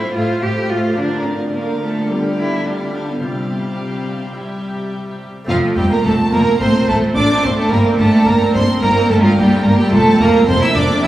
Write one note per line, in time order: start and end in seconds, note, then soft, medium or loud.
0.00 0.12 A2 soft
0.00 0.15 A3 soft
0.00 0.93 A3 soft
0.00 0.93 C4 soft
0.00 0.14 E4 medium
0.00 0.94 F4 soft
0.00 0.15 C5 medium
0.00 0.15 F5 medium
0.14 0.40 A2 soft
0.14 0.24 A2 medium
0.14 0.43 A3 soft
0.14 0.44 F4 medium
0.14 0.43 C5 medium
0.14 0.42 F5 soft
0.42 0.68 A2 soft
0.42 0.52 A2 soft
0.42 0.71 A3 soft
0.42 0.71 G4 medium
0.42 0.70 C5 soft
0.42 0.70 F5 soft
0.70 0.96 A2 soft
0.70 0.79 A2 medium
0.70 0.99 A3 soft
0.70 0.99 F4 medium
0.70 0.98 C5 soft
0.70 0.97 F5 soft
0.93 2.04 A#3 soft
0.93 2.04 D4 soft
0.93 2.05 F4 soft
0.98 3.18 D3 soft
0.98 3.19 D3 medium
0.98 1.50 F3 medium
0.98 1.27 D4 medium
0.98 1.51 A#4 medium
0.98 1.50 F5 medium
1.25 1.56 C4 medium
1.53 2.09 F3 medium
1.53 1.81 A#3 medium
1.53 1.82 A#4 soft
1.53 2.08 F5 medium
1.82 2.09 A3 medium
1.82 2.10 A4 soft
2.06 2.64 G3 medium
2.06 2.18 B3 medium
2.06 3.18 D4 soft
2.06 3.18 F4 soft
2.06 2.65 F5 medium
2.11 2.66 G4 medium
2.39 2.67 E4 medium
2.65 3.21 G3 soft
2.65 2.80 D4 medium
2.65 3.21 G4 soft
2.65 3.22 F5 medium
2.81 2.96 C4 medium
2.95 3.11 D4 medium
3.10 3.24 B3 medium
3.20 5.25 C3 soft
3.20 4.34 G3 medium
3.20 4.31 C4 soft
3.20 4.93 C4 medium
3.20 4.32 F4 soft
3.20 4.34 G4 soft
3.20 4.34 F5 medium
4.33 5.27 G3 soft
4.33 5.44 C4 soft
4.33 5.44 E4 soft
4.33 5.27 G4 medium
4.33 5.29 E5 soft
5.44 5.74 F3 medium
5.44 6.55 A3 medium
5.44 6.56 C4 medium
5.44 6.56 F4 medium
5.49 5.57 F1 medium
5.49 5.57 F2 medium
5.49 5.74 F2 medium
5.49 5.62 C4 medium
5.49 5.57 F4 medium
5.49 5.58 F5 medium
5.63 5.77 A3 medium
5.76 5.85 F1 medium
5.76 6.02 F2 medium
5.76 5.86 F2 medium
5.76 5.82 G3 medium
5.76 5.91 C4 medium
5.76 5.91 G4 medium
5.76 5.90 G5 loud
5.90 6.05 A3 medium
5.90 5.96 A#3 medium
5.90 6.04 A#4 medium
5.90 6.06 A#5 loud
6.04 6.13 F1 medium
6.04 6.30 F2 medium
6.04 6.13 F2 medium
6.04 6.12 A3 medium
6.04 6.18 C4 medium
6.04 6.12 A4 medium
6.04 6.33 A5 loud
6.20 6.33 A3 medium
6.31 6.41 F1 medium
6.31 6.58 F2 medium
6.31 6.41 F2 medium
6.31 6.58 A#3 medium
6.31 6.47 C4 medium
6.31 6.60 A#4 medium
6.31 6.61 A#5 loud
6.47 6.60 A3 medium
6.58 6.68 A1 medium
6.58 6.86 A2 medium
6.58 6.69 A2 medium
6.58 6.74 A3 medium
6.58 7.67 C4 medium
6.58 6.89 C4 medium
6.58 7.67 F4 medium
6.58 6.88 C5 medium
6.58 6.88 C6 loud
6.75 6.89 C4 medium
6.88 6.96 A1 medium
6.88 7.13 A2 medium
6.88 6.96 A2 medium
6.88 7.16 A3 medium
6.88 7.03 A3 medium
6.88 6.97 A4 medium
6.88 6.96 A5 medium
7.02 7.16 C4 medium
7.16 7.24 A1 medium
7.16 7.41 A2 medium
7.16 7.25 A2 medium
7.16 7.29 A3 medium
7.16 7.46 D4 medium
7.16 7.43 D5 medium
7.16 7.43 D6 loud
7.30 7.44 C4 medium
7.43 7.52 A1 medium
7.43 7.69 A2 medium
7.43 7.52 A2 medium
7.43 7.58 A3 medium
7.43 7.58 C4 medium
7.43 7.50 C5 medium
7.43 7.58 C6 medium
7.57 7.71 A3 medium
7.57 7.72 C4 medium
7.57 7.71 A4 medium
7.57 7.72 A5 medium
7.69 7.80 G1 medium
7.69 7.96 G2 medium
7.69 7.80 G2 medium
7.69 7.97 A#3 medium
7.69 9.88 C4 medium
7.69 9.88 E4 medium
7.69 7.99 A#4 medium
7.69 7.80 A#5 loud
7.74 7.86 A#3 medium
7.86 8.00 C4 medium
7.98 8.07 G1 medium
7.98 8.24 G2 medium
7.98 8.07 G2 medium
7.98 8.26 A3 medium
7.98 8.14 A#3 medium
7.98 8.26 A4 medium
7.98 8.27 A5 loud
8.14 8.27 C4 medium
8.26 8.35 G1 medium
8.26 8.34 G2 medium
8.26 8.52 G2 medium
8.26 8.34 A#3 medium
8.26 8.40 A#3 medium
8.26 8.55 A#4 medium
8.26 8.55 A#5 loud
8.42 8.55 C4 medium
8.54 8.63 G1 medium
8.54 8.62 G2 medium
8.54 8.80 G2 medium
8.54 8.69 A#3 medium
8.54 8.84 C4 medium
8.54 8.62 C5 medium
8.54 8.82 C6 loud
8.70 8.83 C4 medium
8.81 8.91 G1 medium
8.81 8.90 G2 medium
8.81 9.08 G2 medium
8.81 9.10 A#3 medium
8.81 8.96 A#3 medium
8.81 9.09 A#4 medium
8.81 9.10 A#5 loud
8.98 9.11 C4 medium
9.09 9.18 G1 medium
9.09 9.35 G2 medium
9.09 9.17 G2 medium
9.09 9.25 A3 medium
9.09 9.24 A#3 medium
9.09 9.23 A4 medium
9.09 9.16 A5 loud
9.23 9.37 F3 medium
9.23 9.39 C4 medium
9.23 9.37 F4 medium
9.23 9.38 F5 medium
9.37 9.45 G1 medium
9.37 9.45 G2 medium
9.37 9.63 G2 medium
9.37 9.67 G3 medium
9.37 9.51 A#3 medium
9.37 9.65 G4 medium
9.37 9.66 G5 loud
9.53 9.66 C4 medium
9.64 9.74 G1 medium
9.64 9.72 G2 medium
9.64 9.90 G2 medium
9.64 9.78 A#3 medium
9.64 9.80 A#3 medium
9.64 9.79 A#4 medium
9.64 9.79 A#5 loud
9.79 9.94 G3 medium
9.79 9.94 C4 medium
9.79 9.93 G4 medium
9.79 9.93 G5 loud
9.88 10.98 A3 medium
9.88 10.99 C4 medium
9.88 11.00 F4 medium
9.93 10.01 F1 medium
9.93 10.18 F2 medium
9.93 10.01 F2 medium
9.93 10.20 A3 loud
9.93 10.06 A3 medium
9.93 10.21 A4 medium
9.93 10.20 A5 loud
10.07 10.21 C4 medium
10.20 10.29 F1 medium
10.20 10.29 F2 medium
10.20 10.46 F2 medium
10.20 10.35 A3 medium
10.20 10.47 A#3 medium
10.20 10.29 A#4 medium
10.20 10.48 A#5 loud
10.35 10.49 C4 medium
10.47 10.57 F1 medium
10.47 10.73 F2 medium
10.47 10.56 F2 medium
10.47 10.62 A3 medium
10.47 10.61 C4 loud
10.47 10.62 C5 medium
10.47 10.62 C6 loud
10.61 10.76 C4 medium
10.61 10.74 E4 medium
10.61 10.76 E5 medium
10.61 10.76 E6 loud
10.75 10.84 F1 medium
10.75 11.01 F2 medium
10.75 10.84 F2 medium
10.75 10.90 A3 medium
10.75 11.05 D4 loud
10.75 11.04 D5 medium
10.75 11.04 D6 loud
10.90 11.04 C4 medium
10.99 11.07 A#3 medium
10.99 11.07 C4 medium
10.99 11.07 G4 medium
11.03 11.07 E2 medium
11.03 11.07 E4 loud
11.03 11.07 E5 loud
11.03 11.07 E6 loud